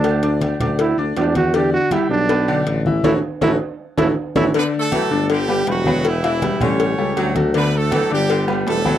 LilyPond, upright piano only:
\new Staff \with { instrumentName = "Upright piano" } { \time 4/4 \key d \major \tempo 4 = 160 <a a' a''>8 <d' d'' d'''>4 <d' d'' d'''>4 <d' d'' d'''>8 <d' d'' d'''>4 | <d d' d''>4 <g g' g''>4 <b b' b''>8 <d d' d''>4 <e e' e''>8 | <fis' a' cis''>8 r8 <fis' a' cis''>8 r4 <fis' a' cis''>8 r8 <fis' a' cis''>8 | <d d' d''>4 <fis fis' a'>8 <d d' d''>4 <g g' b'>8 <g g' b'>8 <b b' g''>8~ |
<b b' g''>8 <e e' e''>8 <g g' b'>8 <g g' a'>4 <g g' a'>4 <fis fis' a'>8 | <d d' d''>4 <fis fis' a'>8 <d d' d''>4 <g g' b'>8 <g g' b'>8 <b b' g''>8 | }